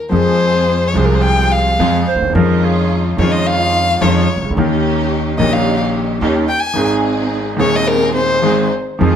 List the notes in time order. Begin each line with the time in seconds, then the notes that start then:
0.09 F2 F3 G#3 C4 F4 G#4 C5
0.14 G#4
0.88 C#5
0.93 C2 C3 F3 G#3 C4 F4 G#4 C5
0.98 G#4
1.05 A#4
1.14 C5
1.22 G5
1.52 F5
1.79 F2 F3 G#3 C4 F4 G#4
2.08 C5
2.15 D2
2.21 D#2
2.28 E2
2.33 F2 D#3 F3 G#3 C#4 D#4 F4 A#4
2.37 F4
2.65 G#4
3.17 F2 D#3 F3 G#3 C#4 D#4 F4 C#5
3.22 F4
3.32 D#5
3.47 F5
4.01 F2 D#3 F3 G#3 C#4 D#4 F4 C#5
4.36 C2
4.43 C#2
4.50 D2
4.57 D#2 D#3 A#3 C#4 D#4 G4
5.38 A#1 A#2 D#3 A#3 C#4 D#4 G4 D#5
5.53 F5
6.21 D#2 D#3 A#3 C#4 D#4 G4
6.49 G5
6.60 G#5
6.74 G#1 G#2 D#3 G#3 C4 D#4 G#4
6.78 G#4
7.57 D#1 D#2 D#3 G#3 C4 D#4 G#4 C#5
7.76 D#5
7.88 A#4
8.15 C5
8.42 G#1 G#2 D#3 G#3 C4 D#4 G#4
8.99 F2 D#3 F3 G#3 C4 D#4 F4 G#4
9.03 F4